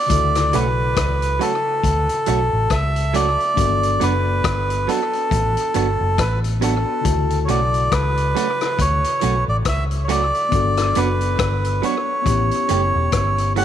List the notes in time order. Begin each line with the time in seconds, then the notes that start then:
Already playing: D5
0.06 D2 C#3 E4, kick, closed hi-hat
0.11 F#4 A4
0.35 cross-stick, closed hi-hat
0.53 B1 F#3 A3 C#4 F#4 B4, closed hi-hat
0.96 C#2, kick, cross-stick, closed hi-hat
1.22 closed hi-hat
1.39 F#3 A3 C#4 F#4 A4, closed hi-hat
1.84 D2, kick, closed hi-hat
2.09 closed hi-hat
2.26 B1 F#3 A3 C#4 F#4, closed hi-hat
2.53 A1
2.70 C#2 E5, kick, cross-stick, closed hi-hat
2.96 closed hi-hat
3.14 F#3 A3 C#4 F#4 D5, closed hi-hat
3.40 closed hi-hat
3.54 G1 A#3 D4 F#4, kick, closed hi-hat
3.60 B3 A4
3.83 closed hi-hat
4.00 F#1 F#3 B3 D4 F#4 B4, closed hi-hat
4.44 G1, kick, cross-stick, closed hi-hat
4.70 closed hi-hat
4.88 F#3 B3 D4 F#4 A4, closed hi-hat
5.13 closed hi-hat
5.31 A1, kick, closed hi-hat
5.57 closed hi-hat
5.74 G1 F#3 B3 D4 F#4, closed hi-hat
6.01 F#1
6.18 A1 B4, kick, cross-stick, closed hi-hat
6.44 closed hi-hat
6.60 F#3 B3 D4 F#4 A4, closed hi-hat
6.64 A4
7.01 C#3 E4, kick, closed hi-hat
7.05 D2 F#4 A4
7.30 closed hi-hat
7.45 F#3 C#5, closed hi-hat
7.49 B1 A3 C#4 F#4 D5
7.74 closed hi-hat
7.92 C#2 B4, kick, cross-stick, closed hi-hat
8.17 closed hi-hat
8.35 F#3 A3 C#4 F#4, closed hi-hat
8.61 cross-stick, closed hi-hat
8.79 D2 C#5, kick, closed hi-hat
9.04 closed hi-hat
9.21 B1 F#3 A3 C#4 F#4, closed hi-hat
9.48 A1 D5
9.65 C#2 E5, kick, cross-stick, closed hi-hat
9.91 closed hi-hat
10.04 C#5
10.08 F#3 A3 C#4 F#4 D5, closed hi-hat
10.35 closed hi-hat
10.49 G1 B3 D4, kick, closed hi-hat
10.53 F#4 A4
10.77 cross-stick, closed hi-hat
10.95 F#1 F#3 B3 D4 F#4 B4, closed hi-hat
11.21 closed hi-hat
11.39 G1, kick, cross-stick, closed hi-hat
11.65 closed hi-hat
11.82 F#3 B3 D4 F#4 C#5, closed hi-hat
12.22 B3 C#4, kick, closed hi-hat
12.26 A1 E4 G4
12.51 closed hi-hat
12.69 F#1 E3 A3 C#4 G4, closed hi-hat
12.95 E1
13.12 G1, kick, cross-stick, closed hi-hat
13.38 closed hi-hat
13.56 E3 A3 C#4 G4 F#5, open hi-hat